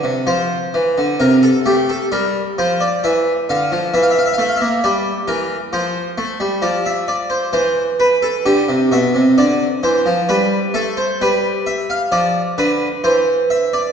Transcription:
0.04 C3
0.27 F3 C5
0.74 E3
0.98 D3
1.20 C3 A#4
1.43 A4
1.66 A3 G4
1.89 A4
2.12 G3 A#4
2.58 F3 C5
2.81 D5
3.04 E3 E5
3.49 D3 F5
3.72 F3
3.94 E3 E5
4.02 F5
4.10 E5
4.19 F5
4.26 E5
4.33 F5
4.38 A3 E5
4.48 F5
4.56 E5
4.61 A#3
4.84 G3 D5
5.28 E3 A#4
5.73 F3 C5
6.18 A3
6.40 G3
6.62 F3 D5
6.86 E5
7.08 D5
7.30 C5
7.53 E3 C5
8.00 B4
8.22 A4
8.46 D3 G4
8.69 C3
8.92 B2 E5
9.15 C3
9.38 D3 D5
9.83 E3 C5
10.06 F3
10.29 G3 B4
10.74 A3 A4
10.97 C5
11.21 G3 B4
11.66 E5
11.90 F5
12.12 F3 D5
12.58 D3 B4
13.04 E3 C5
13.50 E5
13.73 D5

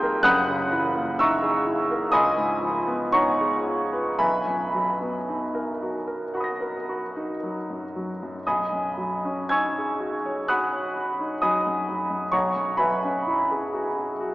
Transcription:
Already playing: F2 C3 G3 A#3 D#4 G4 G#4 G5 A#5 C6 D#6 G6 A#6
0.03 A#4
0.23 F#1 F#2 F#5 B5 D#6 F#6
0.48 C#3
0.72 E3
0.96 A#3
1.19 D#4 E5 A#5 C#6 E6
1.42 G#4
1.67 E4
1.91 A#4
2.12 C#2 D#5 G#5 B5 D#6
2.37 G#2
2.61 F3
2.87 B3
3.12 D#4 C#5 F#5 A#5 C#6
3.41 G#4
3.67 F4
3.92 B4
4.19 B1 B4 E5 G#5 B5
4.48 F#2
4.74 F#3
5.01 B3
5.29 D#4
5.55 A#4
5.82 F#4
6.08 A#4
6.34 F#4 F#5 B5
6.40 D#6 A#6
6.61 A#4
6.89 F#4
7.16 D#4
7.43 F#3
7.70 F#2
7.96 F#3
8.23 F#2
8.47 B1 D#5 G#5 B5 D#6
8.73 F#2
8.98 F#3
9.25 C#4
9.49 D#4 G#5 C#6 E6 G#6
9.78 G#4
10.00 F#4
10.26 C#5
10.48 F#4 F#5 B5 D#6 F#6
10.73 C#5
10.97 F#4
11.20 D#4
11.42 F#3 D#5 G#5 B5 D#6
11.67 F#2
11.89 F#3
12.10 F#2
12.32 B1 C#5 F#5 A#5 C#6
12.56 F#2
12.77 F#3 B4 E5 G#5 B5
13.04 C#4
13.27 E4
13.51 G#4
13.74 F#4
13.98 G#4
14.20 F#4

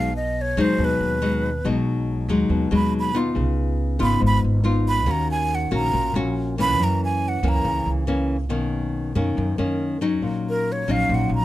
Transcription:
Already playing: B1 B2
0.00 F5
0.16 D#5
0.41 C#5
0.57 D#2 F#3 G#3 D#4
0.61 C5
0.78 D#2 B2
0.85 B4
1.00 D#2
1.22 F#3 G#3 D#4
1.65 B1 B2 F#3 G#3 D#4
2.28 D#2 F#3 G#3 D#4
2.49 D#2 B2
2.71 D#2 F#3 G#3 D#4
2.75 B5
2.99 B5
3.14 B3 D#4 F4
3.35 C#2 C#3
3.99 G#1 B3 D#4 F4 B5
4.20 G#1 G#2
4.27 B5
4.44 G#1
4.64 B3 D#4 F4
4.88 B5
5.06 D#2 D#3 A#3 C#4 F#4
5.11 A#5
5.31 G#5
5.55 F#5
5.71 A#1 A#3 C#4 F#4 A#5
5.93 A#1 A#2
6.14 A#1 A#3 C#4 F#4
6.58 E3 A#3 C#4 B5
6.78 F#2
6.84 A#5
7.05 G#5
7.28 F#5
7.43 C#2 E3 A#3 C#4
7.48 A#5
7.64 C#2 C#3
7.86 C#2
8.07 E3 A#3 C#4
8.49 B1 B2 D#3 A#3 C#4
9.15 F#2 D#3 A#3 C#4
9.37 F#2
9.58 F#2 D#3 A#3 C#4
10.01 F#3 C#4 D#4
10.22 A#1 A#2
10.49 A#4
10.72 C#5
10.88 A#1 F#3 C#4 D#4 F5
11.09 A#1 A#2
11.15 F#5
11.29 A#1
11.35 A#5

